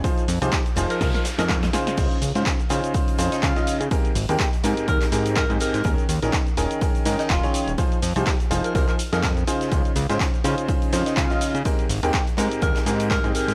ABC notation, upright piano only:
X:1
M:4/4
L:1/16
Q:"Swing 16ths" 1/4=124
K:Dblyd
V:1 name="Upright piano"
[F,EFAc] z2 [F,EFAc] z2 [F,EFAc]2 [EFAc]2 z [F,EFAe] z2 [D,EFAc]2 | [DEFc] z2 [D,DEFc] z2 [D,DEFc]2 [D,DEFc]2 [D,DEFc]3 [D,DEFe]2 z | [A,,CGAB] z2 [A,,CGAB] z2 [A,,CGAB]2 [A,,CGAB]2 [A,,CGAB]3 [A,,CGAe]2 z | [E,DEAB] z2 [E,DEAB] z2 [E,DEAB]2 [E,DEAB]2 [E,DEAB]3 [E,DEAd]2 z |
[F,EFAc] z2 [F,EFAc] z2 [F,EFAc]2 [F,EFAc]2 z [F,EFAe] z2 [D,EFAc]2 | [D,DEFc] z2 [D,DEFc] z2 [D,DEFc]2 [D,DEFc]2 [D,DEFc]3 [D,DEFe]2 z | [A,,CGAB] z2 [A,,CGAB] z2 [A,,CGAB]2 [A,,CGAB]2 [A,,CGAB]3 [A,,CGAe]2 z |]